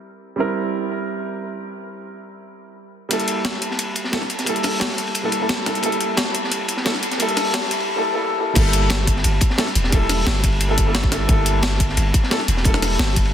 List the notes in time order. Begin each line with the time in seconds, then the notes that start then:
Already playing: G3 C4 E4 A#4
0.36 G3 C4 E4
0.40 A#4
3.09 G3 A#3 E4, closed hi-hat, ride
3.13 A4
3.20 closed hi-hat
3.28 closed hi-hat, ride
3.45 snare, closed hi-hat, ride
3.62 closed hi-hat, ride
3.71 snare
3.79 closed hi-hat, ride
3.95 closed hi-hat, ride
4.04 snare
4.12 G3 A#3 E4 A4, snare, closed hi-hat, ride
4.22 snare
4.30 closed hi-hat, ride
4.39 snare, closed hi-hat
4.45 G3 A#3 E4, closed hi-hat, ride
4.49 A4
4.56 closed hi-hat
4.63 snare, closed hi-hat, open hi-hat
4.80 snare, closed hi-hat, ride
4.90 snare
4.98 closed hi-hat, ride
5.07 ride
5.15 closed hi-hat, ride
5.23 G3 A#3 E4 A4
5.32 closed hi-hat, ride
5.40 G3 A#3 E4 A4
5.49 snare, closed hi-hat, ride
5.65 G3 A#3 E4 A4, snare, closed hi-hat, ride
5.75 closed hi-hat
5.81 G3 A#3 E4, closed hi-hat, ride
5.86 A4
5.92 closed hi-hat
6.00 closed hi-hat, ride
6.17 snare, closed hi-hat, ride
6.34 closed hi-hat, ride
6.44 snare
6.52 closed hi-hat, ride
6.68 closed hi-hat, ride
6.77 snare
6.85 G3 A#3 E4 A4, snare, closed hi-hat, ride
6.95 snare
7.03 closed hi-hat, ride
7.12 snare, closed hi-hat
7.18 G3 A#3 E4, closed hi-hat, ride
7.22 A4
7.29 closed hi-hat
7.37 snare, closed hi-hat, open hi-hat
7.54 snare, closed hi-hat, ride
7.63 snare
7.71 closed hi-hat, ride
7.80 ride
7.96 G3 A#3 E4 A4
8.13 G3 A#3 E4 A4
8.38 G3 A#3 E4 A4
8.54 G1 G3 A#3 E4, kick, closed hi-hat, crash, ride
8.59 A4
8.73 closed hi-hat, ride
8.90 snare, closed hi-hat, ride
9.07 kick, closed hi-hat, ride
9.16 snare
9.24 G1, closed hi-hat, ride
9.41 kick, closed hi-hat, ride
9.50 snare
9.58 G3 A#3 E4 A4, snare, closed hi-hat, ride
9.67 snare
9.75 E1, closed hi-hat, ride
9.84 snare
9.91 G3 A#3 E4, kick, closed hi-hat, ride
9.95 A4
10.09 snare, closed hi-hat, open hi-hat
10.27 G1, snare, closed hi-hat, ride
10.36 snare
10.44 kick, closed hi-hat, ride
10.52 ride
10.60 closed hi-hat, ride
10.69 G3 A#3 E4 A4
10.78 kick, closed hi-hat, ride
10.86 G3 A#3 E4 A4
10.94 snare, closed hi-hat, ride
11.04 kick
11.11 G3 A#3 E4 A4, snare, closed hi-hat, ride
11.27 G1 G3 A#3 E4, kick, closed hi-hat, ride
11.31 A4
11.46 closed hi-hat, ride
11.62 snare, closed hi-hat, ride
11.80 kick, closed hi-hat, ride
11.89 snare
11.97 G1, closed hi-hat, ride
12.14 kick, closed hi-hat, ride
12.23 snare
12.30 G3 A#3 E4 A4, snare, closed hi-hat, ride
12.40 snare
12.48 E1, closed hi-hat, ride
12.57 snare
12.63 G3 A#3 E4, kick, closed hi-hat, ride
12.67 A4
12.74 snare
12.82 snare, closed hi-hat, open hi-hat
12.99 G1, snare, closed hi-hat, ride
13.08 snare
13.16 kick, closed hi-hat, ride
13.25 ride